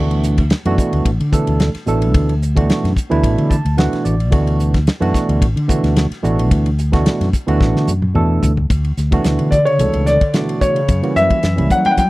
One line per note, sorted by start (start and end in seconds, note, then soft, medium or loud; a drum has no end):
0.00 0.52 D2 medium
0.00 0.41 B2 medium
0.00 0.41 E3 medium
0.00 0.42 A3 medium
0.00 0.42 D4 medium
0.00 0.42 F#4 medium
0.11 ride medium
0.23 hi-hat pedal medium
0.38 kick medium
0.38 ride medium
0.50 snare loud
0.50 ride medium
0.65 0.76 F#2 medium
0.65 1.09 B2 medium
0.65 1.09 E3 medium
0.65 1.09 A3 medium
0.65 1.10 D4 medium
0.65 1.10 F#4 loud
0.65 ride medium
0.78 muted fretless electric bass stroke soft
0.78 kick medium
0.78 hi-hat pedal medium
0.93 1.03 D2 medium
0.93 ride medium
1.05 1.17 A1 medium
1.05 kick medium
1.05 ride medium
1.20 1.42 D3 medium
1.20 ride medium
1.32 1.68 B2 medium
1.32 1.69 E3 medium
1.32 1.69 A3 medium
1.32 1.69 D4 medium
1.32 1.69 A4 medium
1.32 kick medium
1.32 hi-hat pedal medium
1.47 1.70 D2 medium
1.47 ride medium
1.60 snare loud
1.60 ride medium
1.75 muted fretless electric bass stroke soft
1.75 snare soft
1.75 ride medium
1.87 2.14 A1 medium
1.87 2.32 B2 medium
1.87 2.32 E3 medium
1.87 2.33 A3 medium
1.87 2.33 D4 medium
1.87 2.33 A4 medium
1.87 hi-hat pedal medium
2.02 ride medium
2.14 2.71 D2 medium
2.14 kick loud
2.14 ride medium
2.29 ride medium
2.42 hi-hat pedal medium
2.55 2.91 B2 medium
2.55 2.91 E3 medium
2.55 2.91 A3 medium
2.55 2.92 D4 medium
2.55 2.92 F#4 medium
2.55 kick medium
2.55 ride medium
2.70 snare loud
2.70 ride medium
2.84 2.94 F#2 medium
2.84 snare soft
2.84 ride medium
2.97 kick medium
2.97 hi-hat pedal medium
3.10 3.21 D2 medium
3.10 3.54 B2 medium
3.10 3.54 E3 medium
3.10 3.55 A3 medium
3.10 3.55 D4 medium
3.10 3.55 E4 medium
3.10 ride medium
3.23 3.35 A1 medium
3.23 kick medium
3.23 ride medium
3.38 3.60 D3 medium
3.38 ride medium
3.50 3.76 A5 medium
3.50 kick medium
3.50 hi-hat pedal medium
3.65 3.87 D2 medium
3.65 ride medium
3.77 4.14 B2 medium
3.77 4.14 E3 medium
3.77 4.14 A3 medium
3.77 4.14 D4 medium
3.77 4.15 F#4 medium
3.77 4.04 F#5 medium
3.77 snare loud
3.77 ride medium
3.93 muted fretless electric bass stroke soft
3.93 snare soft
3.93 ride medium
4.05 4.32 A1 medium
4.05 4.30 D5 medium
4.05 hi-hat pedal medium
4.20 ride medium
4.31 4.89 D2 medium
4.31 4.77 B2 medium
4.31 4.77 E3 medium
4.31 4.78 A3 medium
4.31 4.78 D4 medium
4.31 4.78 F#4 medium
4.31 kick loud
4.31 ride medium
4.47 ride medium
4.60 hi-hat pedal medium
4.74 kick medium
4.74 snare soft
4.74 ride medium
4.87 snare loud
4.87 ride medium
5.00 5.12 F#2 loud
5.00 5.45 B2 medium
5.00 5.45 E3 medium
5.00 5.45 A3 medium
5.00 5.45 D4 medium
5.00 5.46 F#4 loud
5.00 ride medium
5.14 kick medium
5.14 snare soft
5.14 hi-hat pedal medium
5.29 5.39 D2 medium
5.29 ride medium
5.42 5.54 A1 medium
5.42 kick medium
5.42 ride medium
5.56 5.78 D3 medium
5.56 ride medium
5.68 6.05 B2 medium
5.68 6.05 E3 medium
5.68 6.05 A3 medium
5.68 6.05 D4 medium
5.68 6.05 F#4 medium
5.68 kick medium
5.68 hi-hat pedal medium
5.83 6.06 D2 medium
5.83 snare soft
5.83 ride medium
5.96 snare loud
5.96 ride medium
6.12 snare soft
6.12 ride medium
6.22 6.51 A1 medium
6.22 6.68 B2 medium
6.22 6.69 E3 medium
6.22 6.69 A3 medium
6.22 6.69 D4 medium
6.22 6.69 F#4 medium
6.22 hi-hat pedal medium
6.39 ride medium
6.51 7.07 D2 medium
6.51 kick loud
6.51 ride medium
6.66 ride medium
6.78 hi-hat pedal medium
6.92 7.27 B2 medium
6.92 7.27 E3 medium
6.92 7.28 A3 medium
6.92 7.28 D4 medium
6.92 7.28 F#4 medium
6.92 kick medium
6.92 snare soft
6.92 ride medium
7.06 snare loud
7.06 ride medium
7.21 7.31 F#2 medium
7.21 snare soft
7.21 ride medium
7.33 kick medium
7.33 hi-hat pedal medium
7.47 7.58 D2 medium
7.47 7.91 B2 medium
7.47 7.91 E3 medium
7.47 7.91 A3 medium
7.47 7.92 D4 medium
7.47 7.92 F#4 loud
7.47 ride medium
7.61 7.72 A1 medium
7.61 kick medium
7.61 snare medium
7.75 7.85 D3 medium
7.75 snare medium
7.87 8.12 F#2 medium
7.87 hi-hat pedal medium
8.02 high tom medium
8.14 8.40 E2 medium
8.14 8.51 B2 medium
8.14 8.51 E3 medium
8.14 8.51 A3 medium
8.14 8.51 D4 medium
8.14 8.52 A4 medium
8.14 mid tom medium
8.43 8.67 D2 medium
8.43 floor tom medium
8.43 hi-hat pedal medium
8.57 floor tom medium
8.70 8.92 D2 medium
8.70 kick loud
8.70 hi-hat pedal medium
8.70 ride medium
8.85 ride medium
8.97 9.19 D2 medium
8.97 snare soft
8.97 hi-hat pedal medium
9.11 9.55 B2 medium
9.11 9.55 E3 medium
9.11 9.56 A3 medium
9.11 9.56 D4 medium
9.11 9.56 F#4 medium
9.11 kick medium
9.11 ride medium
9.24 9.36 D2 medium
9.24 snare medium
9.24 hi-hat pedal medium
9.24 ride medium
9.39 9.81 D3 medium
9.39 ride medium
9.51 9.65 D3 medium
9.51 9.65 D5 medium
9.51 kick medium
9.51 hi-hat pedal medium
9.65 10.04 C#3 medium
9.65 10.07 C#5 medium
9.65 ride medium
9.79 9.91 C#2 medium
9.79 10.15 B2 medium
9.79 10.15 E3 medium
9.79 10.15 A3 medium
9.79 10.16 D4 medium
9.79 10.16 A4 medium
9.79 hi-hat pedal medium
9.79 ride medium
9.93 10.16 C#2 medium
9.93 ride medium
10.06 10.58 D3 medium
10.06 10.63 D5 medium
10.06 snare soft
10.06 hi-hat pedal medium
10.21 kick medium
10.21 ride medium
10.33 10.79 B2 medium
10.33 10.79 E3 medium
10.33 10.79 A3 medium
10.33 10.79 D4 medium
10.33 10.80 F#4 medium
10.33 snare medium
10.33 hi-hat pedal medium
10.33 ride medium
10.49 ride medium
10.61 11.12 C#3 medium
10.61 11.17 C#5 medium
10.61 kick medium
10.61 hi-hat pedal medium
10.76 ride medium
10.88 11.00 F#2 medium
10.88 kick medium
10.88 hi-hat pedal medium
10.88 ride medium
11.02 11.37 E3 medium
11.02 11.37 G3 medium
11.02 11.38 A#3 medium
11.02 11.38 C#4 medium
11.02 11.38 F#4 medium
11.02 ride medium
11.16 11.28 F#2 medium
11.16 11.67 E3 medium
11.16 11.67 E5 medium
11.16 snare soft
11.16 hi-hat pedal medium
11.30 kick medium
11.30 ride medium
11.43 11.59 F#2 medium
11.43 snare loud
11.43 hi-hat pedal medium
11.43 ride medium
11.56 11.68 C#2 medium
11.56 12.00 E3 medium
11.56 12.01 G3 medium
11.56 12.01 A#3 medium
11.56 12.01 C#4 medium
11.56 12.02 E4 medium
11.56 ride medium
11.70 11.85 F#3 medium
11.70 11.86 F#5 medium
11.70 kick medium
11.70 hi-hat pedal medium
11.85 11.91 G3 medium
11.85 11.91 G5 medium
11.85 muted fretless electric bass stroke soft
11.85 ride medium
11.91 11.98 F#3 medium
11.91 11.98 F#5 medium
11.97 12.09 F#3 medium
11.97 12.10 G3 medium
11.97 12.10 G5 medium
11.97 kick medium
11.97 hi-hat pedal medium
11.97 ride medium